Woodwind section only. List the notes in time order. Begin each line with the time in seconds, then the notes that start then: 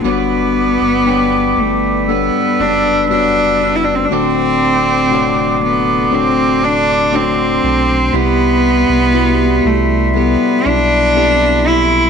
0.05 B4 D5 B5 D6
2.09 E6
4.11 A4 C6 D6
8.13 G3 E5 B5